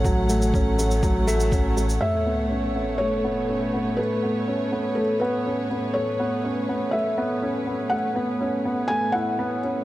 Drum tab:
SH |x-xxx-xxx-xxx-xx|----------------|----------------|----------------|
BD |o---o---o---o---|----------------|----------------|----------------|

SH |----------------|
BD |----------------|